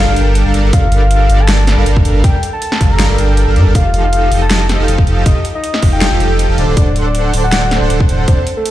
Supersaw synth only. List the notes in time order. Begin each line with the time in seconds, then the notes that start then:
0.08 G3 D4 A4 A#4 F5
0.16 G3 D4 A4 A#4 G5
0.46 G3 D4 A4 A#4 F5
0.54 G3 D4 A4 A#4 D5
0.64 G3 D4 A4 A#4 D5
0.73 G3 D4 A4 A#4 F5
1.30 G3 D4 A4 A#4 D5
1.78 G3 D4 A4 A#4 F5
1.86 G3 D4 A4 A#4 F5
2.05 G3 D4 A4 A#4 F5
2.24 G3 D4 A4 A#4 G5
2.81 G3 D4 A4 A#4 F5
3.10 G3 D4 A4 A#4 F5
3.18 G3 D4 A4 A#4 G5
3.47 G3 D4 A4 A#4 F5
3.56 G3 D4 A4 A#4 D5
3.66 G3 D4 A4 A#4 D5
3.75 F3 D#4 G4 A4 F5
4.32 F3 D#4 G4 A4 D#5
4.79 F3 D#4 G4 A4 F5
4.88 F3 D#4 G4 A4 F5
5.07 F3 D#4 G4 A4 F5
5.26 F3 D#4 G4 A4 G5
5.83 F3 D#4 G4 A4 F5
6.12 F3 D#4 G4 A4 F5
6.20 F3 D#4 G4 A4 G5
6.49 F3 D#4 G4 A4 F5
6.58 D3 D4 A4 C5 D5
6.68 D3 D4 A4 C5 D5
6.77 D3 D4 A4 C5 F#5
7.34 D3 D4 A4 C5 D5
7.81 D3 D4 A4 C5 F#5
7.90 D3 D4 A4 C5 F#5
8.09 D3 D4 A4 C5 F#5
8.28 D3 D4 A4 C5 A5